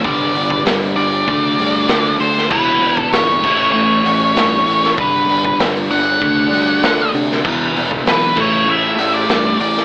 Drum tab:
CC |----------------|x-----x---------|----------------|x-----x---------|
HH |o-o-o-o-o-o-o-o-|--o-o-----o-o-o-|o-o-o-o-o-o-o-o-|--o-o-----o-o-o-|
SD |----o-------o--o|----o-------o--o|----o-------o--o|----o-------o--o|
BD |o--o----o-------|o--o--o---------|o--o----o-------|o--o--o---------|